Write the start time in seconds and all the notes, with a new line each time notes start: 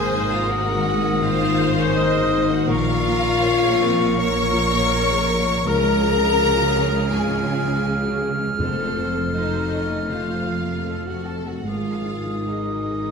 Already playing: G#1 G#2 A#3 G#4 A#4 C5 G#5 D#6
0.02 A#3
0.13 A#4
0.25 A#4
0.31 A#3 F4 F5
0.49 A#3 F#4 A#4 F#5
0.68 G#4
0.75 D#3
0.86 G#4 A#4
1.00 A#3
1.22 D#3 F4 C5 F5
1.40 A#3
1.47 A#3
1.59 A#4
1.72 A#3 A#4
1.79 C#4 C#5
1.95 A#3 D#4 A#4 D#5 D#6
2.13 G#4
2.21 D#3
2.31 A#4
2.45 A#3
2.51 F#4 F#5
2.67 A#1 A#2 F4 A#4 F5 C#6
2.86 A#3
2.94 A#3
3.06 F4
3.18 A#4
3.41 C#4 A#4 C#5
3.61 G#4
3.67 A#3
3.80 C4 A#4
3.91 F3
3.99 A#3
4.17 F3 A#3 A#4 C#5 C#6
4.35 A#3
4.42 F3
4.53 F4
4.67 A#4
4.72 A#3
4.91 C#4 A#4
5.11 G#4
5.15 A#3
5.29 A#4
5.41 F3
5.47 A#3
5.65 C#2 C#3 G#4 A#4 A#5 F6
5.84 G#3
5.89 C#4
6.02 F4 G#4
6.14 G#4
6.21 G#3
6.38 F4 G#4
6.57 F#4
6.62 C#4
6.75 G#4
6.87 G#3
6.92 G#3
7.10 G#2 C#4 F4 G#4 G#5
7.28 G#3
7.36 G#3
7.45 F4
7.65 G#3
7.84 F4 G#4
8.02 F#4
8.09 C#4
8.21 G#4
8.34 G#3
8.40 G#3
8.58 F1 F2 C4 A4 C5
8.77 A3
8.85 A3
8.95 F4
9.10 F4
9.15 A3
9.34 C4 D#4 A4 C5 D#5
9.52 F#4
9.60 A3
9.71 C#4 A4
9.85 C3
9.90 A3
10.09 C3 A3 F4 C5 F5
10.28 A3
10.35 C3
10.47 A#3 F4
10.61 A3 F4
10.83 A4
10.87 C4
11.05 F#4 F#5
11.12 A3
11.24 A4 A5
11.28 A4
11.39 C3
11.45 A3 F#4 F#5
11.65 G#1 G#2 F4 G#4 A#4 D#6
11.69 F5
11.85 G#3
11.94 G#3
12.05 D#4
12.22 D#4
12.27 G#3
12.48 A#3 D#4 G#4 D#5
12.70 F#4
12.76 G#3
12.90 G#4
13.03 D#3